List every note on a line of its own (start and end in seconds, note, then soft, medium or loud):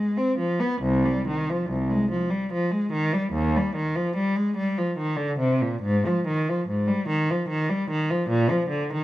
0.00 0.14 G#3 medium
0.17 0.38 C4 soft
0.38 0.59 F3 medium
0.60 0.82 B3 medium
0.82 1.04 C2 medium
1.05 1.26 G3 medium
1.28 1.48 D#3 medium
1.50 1.69 F3 medium
1.70 1.89 C2 medium
1.90 2.10 G#3 medium
2.11 2.30 F3 medium
2.30 2.50 G3 soft
2.53 2.71 F3 medium
2.71 2.91 G#3 medium
2.92 3.12 D#3 medium
3.13 3.33 G3 medium
3.33 3.53 D#2 medium
3.56 3.75 G3 medium
3.76 3.95 D#3 medium
3.96 4.16 F3 medium
4.16 4.35 G3 medium
4.36 4.56 G#3 medium
4.57 4.76 G3 medium
4.78 4.97 F3 medium
4.98 5.17 D#3 medium
5.17 5.38 D3 medium
5.39 5.59 C3 medium
5.61 5.83 A#2 medium
5.82 6.04 G#2 medium
6.06 6.26 F3 medium
6.27 6.47 D#3 medium
6.49 6.68 F3 medium
6.69 6.88 G#2 medium
6.88 7.08 G3 medium
7.08 7.28 D#3 medium
7.31 7.50 F3 medium
7.49 7.68 D#3 medium
7.69 7.89 G3 medium
7.90 8.09 D#3 medium
8.11 8.30 F3 medium
8.29 8.49 A#2 medium
8.50 8.70 F3 medium
8.69 8.90 D3 medium
8.94 9.04 D#3 medium